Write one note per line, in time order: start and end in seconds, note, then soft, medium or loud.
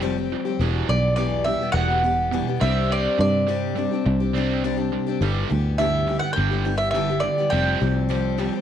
0.00 0.34 F1 loud
0.00 0.16 F3 medium
0.00 0.17 G3 medium
0.00 0.17 C4 medium
0.00 0.16 G4 medium
0.17 0.46 G3 soft
0.17 0.45 C4 medium
0.17 0.44 G4 medium
0.32 0.57 F3 medium
0.32 0.58 G3 medium
0.45 0.61 G3 soft
0.45 0.60 C4 medium
0.45 0.60 G4 medium
0.59 0.82 E1 medium
0.59 0.89 E2 medium
0.59 0.89 B2 medium
0.59 0.87 E3 medium
0.59 0.89 G3 medium
0.59 0.89 B3 medium
0.59 0.90 G4 medium
0.88 1.56 B1 medium
0.88 1.15 E2 medium
0.88 1.15 B2 medium
0.88 1.16 E3 medium
0.88 1.18 G3 medium
0.88 1.18 B3 medium
0.88 1.18 G4 medium
0.88 1.15 D5 medium
1.16 1.46 E2 medium
1.16 1.47 B2 medium
1.16 1.44 E3 medium
1.16 1.45 G3 medium
1.16 1.47 B3 medium
1.16 1.47 G4 medium
1.16 1.46 D5 medium
1.44 1.72 E2 medium
1.44 1.72 B2 medium
1.44 1.60 E3 medium
1.44 1.61 G3 medium
1.44 1.61 B3 medium
1.44 1.59 G4 medium
1.44 1.72 E5 medium
1.61 1.91 E3 soft
1.61 1.90 G3 soft
1.61 1.89 B3 soft
1.61 1.89 G4 soft
1.72 2.41 E1 loud
1.72 2.02 E2 medium
1.72 2.02 B2 medium
1.72 2.02 E3 medium
1.72 2.61 F#5 loud
1.90 2.02 E3 soft
1.90 2.03 G3 soft
1.90 2.04 B3 soft
1.90 2.04 G4 soft
2.03 2.29 E2 medium
2.03 2.30 B2 medium
2.03 2.32 E3 medium
2.03 2.32 G3 medium
2.03 2.33 B3 medium
2.03 2.33 G4 medium
2.32 2.47 E2 medium
2.32 2.47 B2 medium
2.32 2.48 E3 medium
2.32 2.48 G3 medium
2.32 2.47 B3 medium
2.32 2.46 G4 medium
2.47 2.61 E3 soft
2.47 2.61 G3 soft
2.47 2.62 B3 soft
2.47 2.62 G4 soft
2.61 3.06 C2 medium
2.61 3.20 C3 medium
2.61 3.18 G3 medium
2.61 3.19 C4 medium
2.61 3.21 D4 medium
2.61 3.21 G4 medium
2.61 2.91 E5 medium
2.89 3.17 C3 medium
2.89 3.17 G3 medium
2.89 3.18 C4 medium
2.89 3.19 D5 medium
3.18 3.86 G2 medium
3.18 3.45 C3 medium
3.18 3.47 G3 medium
3.18 3.48 C4 medium
3.18 3.48 D4 medium
3.18 3.48 G4 medium
3.18 4.31 D5 medium
3.48 3.77 C3 medium
3.48 3.75 G3 medium
3.48 3.76 C4 medium
3.48 3.76 D4 medium
3.48 3.77 G4 medium
3.76 4.02 C3 medium
3.76 3.91 G3 soft
3.76 3.91 C4 medium
3.76 3.91 D4 medium
3.76 3.90 G4 medium
3.91 4.22 C4 soft
3.91 4.20 D4 soft
3.91 4.19 G4 soft
4.06 4.95 C2 loud
4.06 4.32 C3 medium
4.06 4.32 G3 medium
4.20 4.35 C4 soft
4.20 4.35 D4 soft
4.20 4.35 G4 soft
4.34 4.61 C3 medium
4.34 4.63 G3 medium
4.34 4.64 C4 medium
4.34 4.64 D4 medium
4.38 4.64 G4 medium
4.64 4.78 C3 medium
4.64 4.79 G3 medium
4.64 4.78 C4 medium
4.64 4.76 D4 medium
4.64 4.75 G4 medium
4.76 5.07 C4 soft
4.76 5.07 D4 medium
4.76 5.05 G4 medium
4.92 5.19 C3 medium
4.92 5.19 G3 medium
5.07 5.21 C4 soft
5.07 5.22 D4 soft
5.07 5.21 G4 medium
5.21 5.43 G1 medium
5.21 5.50 G2 medium
5.21 5.50 D3 medium
5.21 5.48 E3 medium
5.21 5.49 G3 medium
5.21 5.50 B3 medium
5.21 5.50 G4 medium
5.50 6.18 D2 medium
5.50 5.76 G2 medium
5.50 5.76 D3 medium
5.50 5.79 E3 medium
5.50 5.79 G3 medium
5.50 5.79 B3 medium
5.50 5.79 G4 medium
5.78 6.08 G2 medium
5.78 6.08 D3 medium
5.78 6.06 E3 medium
5.78 6.07 G3 medium
5.78 6.08 B3 medium
5.78 6.09 G4 medium
5.78 6.19 E5 medium
6.07 6.34 G2 medium
6.07 6.34 D3 medium
6.07 6.22 E3 medium
6.07 6.23 G3 medium
6.07 6.22 B3 medium
6.07 6.21 G4 medium
6.19 6.50 G4 soft
6.19 6.33 F#5 medium
6.23 6.52 E3 soft
6.23 6.52 G3 soft
6.23 6.51 B3 soft
6.33 6.64 G2 medium
6.33 6.64 D3 medium
6.33 6.64 G3 medium
6.33 6.77 G5 medium
6.37 7.27 G1 loud
6.51 6.64 E3 soft
6.51 6.64 G3 soft
6.51 6.65 B3 soft
6.51 6.66 G4 soft
6.65 6.92 G2 medium
6.65 6.92 D3 medium
6.65 6.94 E3 medium
6.65 6.94 G3 medium
6.65 6.94 B3 medium
6.65 6.95 G4 medium
6.78 6.90 E5 medium
6.91 7.09 G2 medium
6.91 7.09 D3 medium
6.91 7.23 E5 medium
6.95 7.09 E3 medium
6.95 7.09 G3 medium
6.95 7.09 B3 medium
6.95 7.08 G4 medium
7.09 7.39 E3 soft
7.09 7.38 G3 soft
7.09 7.38 B3 soft
7.09 7.37 G4 medium
7.20 7.49 G2 medium
7.20 7.50 D3 medium
7.20 7.52 D5 medium
7.38 7.51 E3 soft
7.38 7.51 G3 soft
7.38 7.52 B3 soft
7.38 7.52 G4 medium
7.50 7.75 F1 medium
7.50 7.79 F3 medium
7.50 7.80 G3 medium
7.50 7.81 C4 medium
7.50 7.81 G4 medium
7.50 8.34 G5 medium
7.80 8.49 C2 medium
7.80 8.08 F3 soft
7.80 8.08 G3 soft
7.80 8.09 C4 medium
7.80 8.09 G4 medium
8.09 8.37 F3 medium
8.09 8.37 G3 medium
8.09 8.38 C4 medium
8.09 8.39 G4 medium
8.38 8.53 F3 medium
8.38 8.53 G3 medium
8.38 8.53 C4 medium
8.38 8.51 G4 medium
8.53 8.61 G3 soft
8.53 8.61 C4 soft
8.53 8.61 G4 soft